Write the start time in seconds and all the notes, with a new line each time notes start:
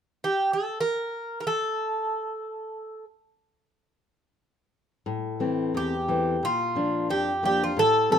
0.24 G4
0.53 A4
0.81 A#4
1.40 A#4
1.47 A4
5.06 A2
5.40 E3 A3 C4
5.74 E2 G4
6.08 E3 A3 C4
6.43 A#2 F4
6.75 F3 A#3 D4
7.10 F2 G4
7.43 F3 A#3 D4 G4
7.63 F4
7.77 A2 A4
8.10 E3 A3 C4 A4